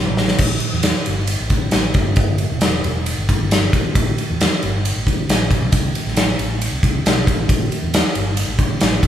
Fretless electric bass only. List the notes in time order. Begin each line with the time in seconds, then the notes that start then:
Already playing: A1
0.39 A1
0.73 E2
1.07 G1
1.40 A1
1.73 A1
1.95 G1
2.51 E1
2.85 E1
3.18 G1
3.41 G1
3.73 A1
3.95 A1
4.30 E2
4.63 G1
4.96 A1
5.29 A1
5.62 B1
5.73 C2
6.07 A1
6.39 A1
6.72 C2
6.83 C2
7.05 B1
7.27 A1
7.49 A1
7.83 E2
8.16 G1
8.48 A1
8.81 A1
9.03 G1